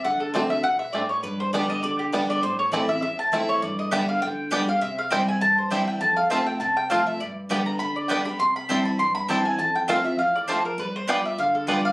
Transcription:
0.05 steel-string acoustic guitar D3, mandolin F#5
0.20 mandolin A4
0.34 steel-string acoustic guitar D3 A3 C4 F#4, five-string banjo A3 C4 D4, mandolin C5
0.50 mandolin E5
0.63 steel-string acoustic guitar B2, mandolin F#5
0.79 mandolin E5
0.93 steel-string acoustic guitar A2, five-string banjo A3 C4 D4, mandolin D5
1.09 mandolin C#5
1.23 steel-string acoustic guitar G2, mandolin B4
1.40 mandolin C5
1.53 steel-string acoustic guitar D3 G3 B3 G4, five-string banjo G3 B3 D4, mandolin D5
1.70 mandolin D#5
1.83 steel-string acoustic guitar D3, mandolin D5
1.99 mandolin G4
2.12 steel-string acoustic guitar D3 G3 B3 G4, five-string banjo G3 B3 D4, mandolin B4
2.30 mandolin D5
2.43 steel-string acoustic guitar A2, mandolin C5
2.59 mandolin C#5
2.72 steel-string acoustic guitar E3 A3 C4 E4, five-string banjo A3 C4 E4, mandolin D5
2.88 steel-string acoustic guitar C4 E4, mandolin E5
3.02 steel-string acoustic guitar E2, mandolin E5
3.19 mandolin A5
3.32 steel-string acoustic guitar E3 A3 C4 E4, five-string banjo A3 C4 E4, mandolin E5
3.49 mandolin C#5
3.62 steel-string acoustic guitar G2, mandolin D5
3.79 mandolin D#5
3.91 steel-string acoustic guitar D3 G3 B3 G4, five-string banjo G3 B3 D4, mandolin B3 G4 D5 E5 G5
4.09 mandolin F5
4.22 steel-string acoustic guitar D3, mandolin G5
4.51 steel-string acoustic guitar D3 G3 B3 G4, five-string banjo G3 B3 D4, mandolin B3 G4 D5 G5
4.68 steel-string acoustic guitar B3 G4, mandolin F5
4.81 steel-string acoustic guitar C3, mandolin E5
4.98 mandolin F5
5.11 steel-string acoustic guitar E3 G3 C4 E4, five-string banjo G3 C4 E4, mandolin C4 E4 C5 G5
5.28 mandolin G#5
5.41 steel-string acoustic guitar G2, mandolin A5
5.58 mandolin C5
5.70 steel-string acoustic guitar E3 G3 C4 E4, five-string banjo G3 C4 E4, mandolin C4 E4 C5 E5 G5
5.87 mandolin G5
6.01 steel-string acoustic guitar F2, mandolin A5
6.17 mandolin F5
6.30 steel-string acoustic guitar F3 A3 C4 F4, five-string banjo A3 C4 F4, mandolin C4 F4 C5 E5 A5
6.46 mandolin G5
6.60 steel-string acoustic guitar C3, mandolin A5
6.77 mandolin G5
6.90 steel-string acoustic guitar F3 A3 C4 F4, five-string banjo A3 C4 F4, mandolin C4 F4 C5 F5 A5
7.07 mandolin E5
7.20 steel-string acoustic guitar G2, mandolin D5
7.49 steel-string acoustic guitar D3 G3 B3 G4, five-string banjo G3 B3 D4, mandolin B3 G4 D5 G5
7.66 mandolin A#5
7.79 steel-string acoustic guitar D3, mandolin B5
7.96 mandolin D5
8.08 steel-string acoustic guitar D3 G3 B3 G4, five-string banjo G3 B3 D4, mandolin B3 G4 D5 G5
8.25 steel-string acoustic guitar B3 G4, mandolin B5
8.39 steel-string acoustic guitar C3, mandolin C6
8.56 mandolin B5
8.69 steel-string acoustic guitar E3 G3 C4 E4, five-string banjo G3 C4 E4, mandolin C4 E4 C5 G5 A5
8.85 mandolin B5
8.99 steel-string acoustic guitar G2, mandolin C6
9.15 mandolin B5
9.28 steel-string acoustic guitar E3 G3 C4 E4, five-string banjo G3 C4 E4, mandolin C4 E4 C5 G5 A5
9.45 mandolin G#5
9.59 steel-string acoustic guitar F2, mandolin A5
9.75 mandolin G5
9.88 steel-string acoustic guitar F3 A3 C4 F4, five-string banjo A3 C4 F4, mandolin C4 F4 C5 F5 A5
10.04 steel-string acoustic guitar C4 F4, mandolin E5
10.19 steel-string acoustic guitar E3, mandolin F5
10.36 mandolin D5
10.48 steel-string acoustic guitar F3, five-string banjo A3 C4 F4, mandolin C4 F4 C5 A5
10.65 mandolin A#4
10.78 steel-string acoustic guitar G3, mandolin B4
10.96 mandolin C5
11.07 steel-string acoustic guitar G3 B3 F4, five-string banjo G3 B3 D4, mandolin B3 F4 B4 D5 G5
11.26 mandolin E5
11.38 steel-string acoustic guitar D3, mandolin F5
11.55 mandolin A4
11.67 steel-string acoustic guitar G3 B3 F4, five-string banjo G3 B3 D4, mandolin B3 F4 B4 D5 G5
11.85 mandolin F5

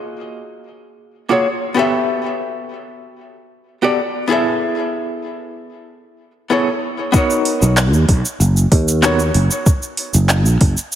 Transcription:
Already playing: hollow-body jazz guitar A#3 F4 F#4 G#4 D#5
1.29 hollow-body jazz guitar A#3 F4 F#4 G#4 C#5
1.74 hollow-body jazz guitar B3 F#4 G4 A4
1.79 hollow-body jazz guitar E5
3.82 hollow-body jazz guitar B3 F#4 G4 A4 D5
4.28 hollow-body jazz guitar B3 E4 G#4 A4
4.32 hollow-body jazz guitar E5
6.50 hollow-body jazz guitar B3 E4 G#4 A4 C#5
7.12 hollow-body jazz guitar B3 D#4 F#4 A#4, kick, shaker
7.17 hollow-body jazz guitar C#5
7.30 shaker
7.45 open hi-hat
7.62 fretless electric bass B1, shaker
7.77 clap, shaker
7.93 fretless electric bass D#2, shaker
8.09 fretless electric bass B1, kick, open hi-hat
8.25 shaker
8.40 fretless electric bass F#1, shaker
8.57 shaker
8.72 fretless electric bass D#2, kick, open hi-hat
8.88 shaker
9.02 hollow-body jazz guitar B3 D#4 F#4 A#4 C#5, clap, shaker
9.19 shaker
9.34 fretless electric bass F#1, open hi-hat
9.51 shaker
9.66 kick, shaker
9.82 shaker
9.97 open hi-hat
10.14 fretless electric bass F#1, shaker
10.29 clap, shaker
10.46 fretless electric bass A#1, shaker
10.61 fretless electric bass F#1, kick, open hi-hat
10.77 shaker
10.92 shaker

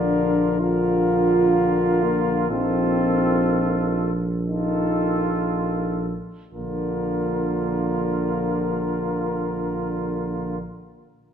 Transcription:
Already playing: tuba A#1, trombone D3, french horn D4, flugelhorn F4, cornet A#4
0.60 trombone D3, flugelhorn F4, french horn F4, cornet A#4
2.03 french horn A#3
2.50 tuba A#1, trombone D#3, french horn C4, flugelhorn F4, cornet A4
4.47 trombone D#3, french horn D#4, flugelhorn F4, cornet A4
6.52 tuba A#1, trombone D3, french horn A#3, flugelhorn F4, cornet A#4

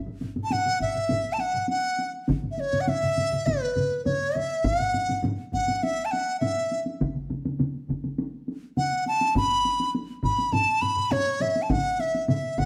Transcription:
0.06 taiko low-mid, taiko high
0.21 taiko low-mid, taiko high
0.36 taiko low-mid, taiko high
0.44 dizi A5
0.51 dizi F#5, taiko low-mid, taiko high
0.65 taiko low-mid, taiko high
0.80 dizi E5, taiko, taiko low-mid, taiko high
0.95 taiko low-mid, taiko high
1.09 taiko, taiko low-mid, taiko high
1.24 taiko high
1.33 dizi A5
1.38 dizi F#5, taiko high
1.53 taiko low-mid, taiko high
1.68 dizi F#5, taiko high
1.84 taiko high
1.99 taiko high
2.13 taiko high
2.28 taiko, taiko low-mid, taiko mid, taiko high
2.43 taiko low-mid, taiko mid, taiko high
2.51 dizi E5
2.58 dizi C#5, taiko high
2.73 taiko low-mid, taiko mid, taiko high
2.81 dizi F#5
2.87 dizi E5, taiko low-mid, taiko mid, taiko high
3.02 taiko low-mid, taiko mid, taiko high
3.17 taiko low-mid, taiko mid, taiko high
3.32 taiko low-mid, taiko mid, taiko high
3.46 dizi B4, taiko, taiko low-mid, taiko mid, taiko high
3.62 taiko high
3.76 taiko low-mid, taiko mid, taiko high
3.91 taiko high
4.05 dizi C#5, taiko low-mid, taiko mid, taiko high
4.21 taiko high
4.35 dizi E5, taiko low-mid, taiko mid, taiko high
4.64 dizi F#5, taiko, taiko low-mid, taiko high
4.79 taiko low-mid
4.94 taiko low-mid, taiko high
5.09 taiko low-mid, taiko high
5.23 taiko low-mid, taiko high
5.52 dizi F#5, taiko, taiko low-mid, taiko high
5.67 taiko low-mid, taiko high
5.76 dizi F#5
5.83 dizi E5, taiko high
6.05 dizi A5
6.11 dizi F#5, taiko high
6.40 dizi E5, taiko low-mid, taiko high
6.72 taiko high
6.86 taiko high
7.00 taiko, taiko mid, taiko high
7.15 taiko mid
7.29 taiko mid, taiko high
7.45 taiko mid, taiko high
7.59 taiko mid, taiko high
7.89 taiko, taiko mid, taiko high
8.04 taiko mid, taiko high
8.18 taiko high
8.48 taiko high
8.77 dizi F#5, taiko mid, taiko high
9.06 dizi A5, taiko high
9.21 taiko high
9.35 dizi B5, taiko, taiko low-mid, taiko high
9.65 taiko high
9.80 taiko high
9.95 taiko high
10.23 dizi B5, taiko, taiko low-mid, taiko high
10.38 taiko high
10.52 dizi A5, taiko low-mid, taiko high
10.81 dizi B5, taiko low-mid, taiko high
10.97 taiko low-mid
11.11 dizi C#5, taiko low-mid, taiko high
11.40 dizi E5, taiko low-mid, taiko high
11.56 taiko high
11.62 dizi A5
11.69 dizi F#5, taiko, taiko low-mid, taiko mid, taiko high
11.99 dizi E5, taiko high
12.15 taiko high
12.28 dizi E5, taiko low-mid, taiko mid, taiko high
12.58 dizi F#5, taiko, taiko low-mid, taiko mid, taiko high

